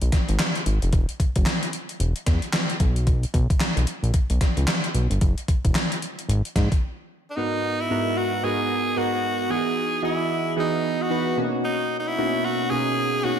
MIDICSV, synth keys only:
0, 0, Header, 1, 2, 480
1, 0, Start_track
1, 0, Key_signature, 5, "minor"
1, 0, Tempo, 535714
1, 831, Time_signature, 4, 2, 24, 8
1, 12002, End_track
2, 0, Start_track
2, 0, Title_t, "Synth keys"
2, 0, Program_c, 0, 88
2, 6601, Note_on_c, 0, 44, 69
2, 6602, Note_on_c, 0, 59, 62
2, 6602, Note_on_c, 0, 63, 66
2, 6606, Note_on_c, 0, 66, 61
2, 6610, Note_on_c, 0, 70, 78
2, 6749, Control_c, 0, 64, 127
2, 6987, Note_off_c, 0, 44, 0
2, 6987, Note_off_c, 0, 59, 0
2, 6987, Note_off_c, 0, 63, 0
2, 6989, Note_off_c, 0, 66, 0
2, 6991, Note_off_c, 0, 70, 0
2, 7079, Note_on_c, 0, 44, 87
2, 7082, Note_on_c, 0, 59, 86
2, 7082, Note_on_c, 0, 63, 80
2, 7087, Note_on_c, 0, 66, 75
2, 7090, Note_on_c, 0, 70, 93
2, 7466, Note_off_c, 0, 44, 0
2, 7467, Note_off_c, 0, 59, 0
2, 7467, Note_off_c, 0, 63, 0
2, 7470, Note_off_c, 0, 66, 0
2, 7471, Note_off_c, 0, 70, 0
2, 7553, Note_on_c, 0, 44, 79
2, 7554, Note_on_c, 0, 59, 76
2, 7556, Note_on_c, 0, 63, 75
2, 7559, Note_on_c, 0, 66, 76
2, 7565, Note_on_c, 0, 70, 90
2, 7943, Note_off_c, 0, 44, 0
2, 7943, Note_off_c, 0, 59, 0
2, 7944, Note_off_c, 0, 63, 0
2, 7946, Note_off_c, 0, 66, 0
2, 7949, Note_off_c, 0, 70, 0
2, 8030, Note_on_c, 0, 44, 83
2, 8033, Note_on_c, 0, 59, 72
2, 8033, Note_on_c, 0, 63, 78
2, 8036, Note_on_c, 0, 66, 75
2, 8039, Note_on_c, 0, 70, 91
2, 8421, Note_off_c, 0, 44, 0
2, 8423, Note_off_c, 0, 59, 0
2, 8423, Note_off_c, 0, 63, 0
2, 8424, Note_off_c, 0, 66, 0
2, 8426, Note_off_c, 0, 70, 0
2, 8510, Note_on_c, 0, 52, 75
2, 8510, Note_on_c, 0, 59, 64
2, 8513, Note_on_c, 0, 63, 60
2, 8516, Note_on_c, 0, 66, 66
2, 8519, Note_on_c, 0, 68, 80
2, 8522, Control_c, 0, 64, 0
2, 8685, Control_c, 0, 64, 127
2, 8901, Note_off_c, 0, 52, 0
2, 8901, Note_off_c, 0, 59, 0
2, 8903, Note_off_c, 0, 63, 0
2, 8904, Note_off_c, 0, 66, 0
2, 8906, Note_off_c, 0, 68, 0
2, 8980, Note_on_c, 0, 52, 91
2, 8982, Note_on_c, 0, 59, 78
2, 8986, Note_on_c, 0, 75, 84
2, 8987, Note_on_c, 0, 66, 78
2, 8990, Note_on_c, 0, 68, 96
2, 9376, Note_off_c, 0, 52, 0
2, 9377, Note_off_c, 0, 59, 0
2, 9379, Note_off_c, 0, 75, 0
2, 9380, Note_off_c, 0, 66, 0
2, 9381, Note_off_c, 0, 68, 0
2, 9465, Note_on_c, 0, 52, 87
2, 9465, Note_on_c, 0, 59, 80
2, 9467, Note_on_c, 0, 63, 68
2, 9469, Note_on_c, 0, 66, 77
2, 9474, Note_on_c, 0, 68, 87
2, 9859, Note_off_c, 0, 52, 0
2, 9859, Note_off_c, 0, 59, 0
2, 9860, Note_off_c, 0, 63, 0
2, 9861, Note_off_c, 0, 66, 0
2, 9863, Note_off_c, 0, 68, 0
2, 9945, Note_on_c, 0, 52, 81
2, 9948, Note_on_c, 0, 59, 73
2, 9948, Note_on_c, 0, 63, 72
2, 9951, Note_on_c, 0, 66, 78
2, 9957, Note_on_c, 0, 71, 97
2, 10184, Note_off_c, 0, 66, 0
2, 10187, Note_on_c, 0, 47, 84
2, 10188, Note_off_c, 0, 52, 0
2, 10189, Note_off_c, 0, 59, 0
2, 10189, Note_off_c, 0, 63, 0
2, 10191, Note_on_c, 0, 58, 74
2, 10193, Note_on_c, 0, 61, 81
2, 10194, Note_off_c, 0, 71, 0
2, 10195, Note_on_c, 0, 62, 59
2, 10195, Note_on_c, 0, 66, 97
2, 10200, Control_c, 0, 64, 0
2, 10253, Note_on_c, 0, 63, 80
2, 10262, Note_off_c, 0, 62, 0
2, 10378, Control_c, 0, 64, 127
2, 10784, Note_off_c, 0, 47, 0
2, 10786, Note_off_c, 0, 58, 0
2, 10787, Note_off_c, 0, 61, 0
2, 10788, Note_off_c, 0, 66, 0
2, 10817, Note_off_c, 0, 63, 0
2, 10913, Note_on_c, 0, 47, 85
2, 10914, Note_on_c, 0, 58, 87
2, 10919, Note_on_c, 0, 61, 79
2, 10919, Note_on_c, 0, 63, 77
2, 10920, Note_on_c, 0, 66, 90
2, 11303, Note_off_c, 0, 47, 0
2, 11303, Note_off_c, 0, 58, 0
2, 11306, Note_off_c, 0, 61, 0
2, 11306, Note_off_c, 0, 63, 0
2, 11306, Note_off_c, 0, 66, 0
2, 11388, Note_on_c, 0, 47, 85
2, 11388, Note_on_c, 0, 58, 73
2, 11390, Note_on_c, 0, 61, 78
2, 11394, Note_on_c, 0, 63, 76
2, 11399, Note_on_c, 0, 68, 90
2, 11780, Note_off_c, 0, 47, 0
2, 11780, Note_off_c, 0, 58, 0
2, 11782, Note_off_c, 0, 61, 0
2, 11783, Note_off_c, 0, 63, 0
2, 11786, Note_off_c, 0, 68, 0
2, 11865, Note_on_c, 0, 47, 77
2, 11868, Note_on_c, 0, 58, 75
2, 11871, Note_on_c, 0, 61, 73
2, 11873, Note_on_c, 0, 63, 73
2, 11874, Note_on_c, 0, 66, 90
2, 12002, Note_off_c, 0, 47, 0
2, 12002, Note_off_c, 0, 58, 0
2, 12002, Note_off_c, 0, 61, 0
2, 12002, Note_off_c, 0, 63, 0
2, 12002, Note_off_c, 0, 66, 0
2, 12002, End_track
0, 0, End_of_file